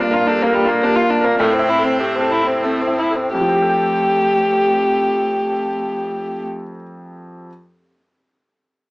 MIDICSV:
0, 0, Header, 1, 6, 480
1, 0, Start_track
1, 0, Key_signature, -1, "major"
1, 0, Tempo, 550459
1, 1210, Time_signature, 3, 2, 24, 8
1, 1211, Tempo, 626305
1, 2171, Tempo, 689655
1, 6529, End_track
2, 0, Start_track
2, 0, Title_t, "Vibraphone"
2, 0, Program_c, 0, 11
2, 23, Note_on_c, 0, 74, 72
2, 88, Note_off_c, 0, 74, 0
2, 138, Note_on_c, 0, 77, 71
2, 203, Note_off_c, 0, 77, 0
2, 249, Note_on_c, 0, 67, 105
2, 317, Note_off_c, 0, 67, 0
2, 363, Note_on_c, 0, 77, 84
2, 432, Note_off_c, 0, 77, 0
2, 483, Note_on_c, 0, 77, 84
2, 552, Note_off_c, 0, 77, 0
2, 602, Note_on_c, 0, 74, 76
2, 672, Note_off_c, 0, 74, 0
2, 714, Note_on_c, 0, 67, 117
2, 787, Note_off_c, 0, 67, 0
2, 837, Note_on_c, 0, 77, 82
2, 911, Note_off_c, 0, 77, 0
2, 959, Note_on_c, 0, 74, 81
2, 1034, Note_off_c, 0, 74, 0
2, 1085, Note_on_c, 0, 77, 74
2, 1161, Note_off_c, 0, 77, 0
2, 1212, Note_on_c, 0, 69, 107
2, 1280, Note_off_c, 0, 69, 0
2, 1442, Note_on_c, 0, 76, 70
2, 1511, Note_off_c, 0, 76, 0
2, 1562, Note_on_c, 0, 81, 72
2, 1632, Note_off_c, 0, 81, 0
2, 1679, Note_on_c, 0, 69, 103
2, 1750, Note_off_c, 0, 69, 0
2, 1800, Note_on_c, 0, 81, 75
2, 1872, Note_off_c, 0, 81, 0
2, 1922, Note_on_c, 0, 81, 63
2, 1996, Note_off_c, 0, 81, 0
2, 2046, Note_on_c, 0, 76, 68
2, 2122, Note_off_c, 0, 76, 0
2, 2172, Note_on_c, 0, 69, 103
2, 2242, Note_off_c, 0, 69, 0
2, 2292, Note_on_c, 0, 81, 71
2, 2363, Note_off_c, 0, 81, 0
2, 2414, Note_on_c, 0, 76, 61
2, 2486, Note_off_c, 0, 76, 0
2, 2532, Note_on_c, 0, 81, 53
2, 2604, Note_off_c, 0, 81, 0
2, 6529, End_track
3, 0, Start_track
3, 0, Title_t, "Analog synth pad"
3, 0, Program_c, 1, 89
3, 0, Note_on_c, 1, 62, 78
3, 0, Note_on_c, 1, 65, 82
3, 0, Note_on_c, 1, 70, 76
3, 1213, Note_off_c, 1, 65, 0
3, 1214, Note_off_c, 1, 70, 0
3, 1214, Note_on_c, 1, 60, 86
3, 1215, Note_off_c, 1, 62, 0
3, 1217, Note_on_c, 1, 64, 84
3, 1218, Note_on_c, 1, 69, 80
3, 2643, Note_off_c, 1, 60, 0
3, 2643, Note_off_c, 1, 69, 0
3, 2645, Note_on_c, 1, 67, 79
3, 2651, Note_on_c, 1, 60, 82
3, 2652, Note_on_c, 1, 69, 77
3, 2654, Note_off_c, 1, 64, 0
3, 4825, Note_off_c, 1, 67, 0
3, 4832, Note_off_c, 1, 60, 0
3, 4832, Note_off_c, 1, 69, 0
3, 6529, End_track
4, 0, Start_track
4, 0, Title_t, "Grand piano"
4, 0, Program_c, 2, 0
4, 0, Control_c, 2, 64, 127
4, 0, Note_on_c, 2, 43, 86
4, 0, Note_on_c, 2, 65, 75
4, 96, Note_on_c, 2, 70, 80
4, 181, Note_off_c, 2, 65, 0
4, 252, Note_on_c, 2, 69, 68
4, 338, Note_off_c, 2, 70, 0
4, 402, Note_off_c, 2, 69, 0
4, 407, Note_on_c, 2, 70, 83
4, 565, Note_on_c, 2, 65, 80
4, 655, Note_off_c, 2, 70, 0
4, 732, Note_on_c, 2, 58, 78
4, 817, Note_off_c, 2, 65, 0
4, 889, Note_on_c, 2, 65, 67
4, 985, Note_off_c, 2, 58, 0
4, 1052, Note_on_c, 2, 70, 76
4, 1149, Note_off_c, 2, 65, 0
4, 1184, Note_off_c, 2, 43, 0
4, 1215, Note_off_c, 2, 70, 0
4, 1218, Note_on_c, 2, 45, 90
4, 1225, Control_c, 2, 64, 0
4, 1365, Note_on_c, 2, 64, 83
4, 1376, Control_c, 2, 64, 127
4, 1519, Note_on_c, 2, 69, 74
4, 1613, Note_off_c, 2, 64, 0
4, 1681, Note_on_c, 2, 67, 66
4, 1773, Note_off_c, 2, 69, 0
4, 1835, Note_on_c, 2, 69, 74
4, 1840, Note_off_c, 2, 67, 0
4, 2005, Note_on_c, 2, 64, 69
4, 2102, Note_off_c, 2, 69, 0
4, 2176, Note_on_c, 2, 60, 58
4, 2266, Note_off_c, 2, 64, 0
4, 2332, Note_on_c, 2, 64, 55
4, 2428, Note_off_c, 2, 60, 0
4, 2495, Note_on_c, 2, 69, 56
4, 2589, Note_off_c, 2, 64, 0
4, 2626, Note_off_c, 2, 45, 0
4, 2653, Note_off_c, 2, 69, 0
4, 2659, Note_on_c, 2, 41, 58
4, 2666, Control_c, 2, 64, 0
4, 2708, Note_on_c, 2, 53, 63
4, 2756, Note_on_c, 2, 60, 65
4, 2807, Note_on_c, 2, 67, 62
4, 2821, Control_c, 2, 64, 127
4, 2853, Note_on_c, 2, 69, 63
4, 2903, Note_on_c, 2, 79, 61
4, 4839, Note_off_c, 2, 41, 0
4, 4888, Note_off_c, 2, 53, 0
4, 4937, Note_off_c, 2, 60, 0
4, 4987, Note_off_c, 2, 67, 0
4, 5033, Note_off_c, 2, 69, 0
4, 5084, Note_off_c, 2, 79, 0
4, 5547, Control_c, 2, 64, 0
4, 6529, End_track
5, 0, Start_track
5, 0, Title_t, "Violin"
5, 0, Program_c, 3, 40
5, 4, Note_on_c, 3, 62, 86
5, 115, Note_on_c, 3, 65, 78
5, 128, Note_off_c, 3, 62, 0
5, 240, Note_on_c, 3, 62, 86
5, 253, Note_off_c, 3, 65, 0
5, 367, Note_on_c, 3, 58, 81
5, 380, Note_off_c, 3, 62, 0
5, 470, Note_on_c, 3, 55, 90
5, 483, Note_off_c, 3, 58, 0
5, 593, Note_on_c, 3, 58, 83
5, 606, Note_off_c, 3, 55, 0
5, 729, Note_on_c, 3, 62, 93
5, 742, Note_off_c, 3, 58, 0
5, 833, Note_on_c, 3, 65, 84
5, 846, Note_off_c, 3, 62, 0
5, 961, Note_on_c, 3, 62, 85
5, 974, Note_off_c, 3, 65, 0
5, 1085, Note_on_c, 3, 58, 90
5, 1098, Note_off_c, 3, 62, 0
5, 1207, Note_off_c, 3, 58, 0
5, 1212, Note_on_c, 3, 57, 92
5, 1320, Note_on_c, 3, 60, 80
5, 1332, Note_off_c, 3, 57, 0
5, 1435, Note_on_c, 3, 64, 83
5, 1446, Note_off_c, 3, 60, 0
5, 1559, Note_on_c, 3, 60, 71
5, 1570, Note_off_c, 3, 64, 0
5, 1672, Note_on_c, 3, 57, 79
5, 1683, Note_off_c, 3, 60, 0
5, 1800, Note_on_c, 3, 60, 72
5, 1812, Note_off_c, 3, 57, 0
5, 1917, Note_on_c, 3, 64, 79
5, 1929, Note_off_c, 3, 60, 0
5, 2041, Note_on_c, 3, 60, 70
5, 2052, Note_off_c, 3, 64, 0
5, 2167, Note_on_c, 3, 57, 72
5, 2177, Note_off_c, 3, 60, 0
5, 2292, Note_on_c, 3, 60, 73
5, 2302, Note_off_c, 3, 57, 0
5, 2411, Note_on_c, 3, 64, 65
5, 2422, Note_off_c, 3, 60, 0
5, 2530, Note_on_c, 3, 60, 63
5, 2541, Note_off_c, 3, 64, 0
5, 2648, Note_off_c, 3, 60, 0
5, 2652, Note_on_c, 3, 67, 78
5, 4832, Note_off_c, 3, 67, 0
5, 6529, End_track
6, 0, Start_track
6, 0, Title_t, "Cello"
6, 0, Program_c, 4, 42
6, 0, Note_on_c, 4, 58, 88
6, 1176, Note_off_c, 4, 58, 0
6, 1206, Note_on_c, 4, 60, 101
6, 2445, Note_off_c, 4, 60, 0
6, 2646, Note_on_c, 4, 57, 77
6, 4827, Note_off_c, 4, 57, 0
6, 6529, End_track
0, 0, End_of_file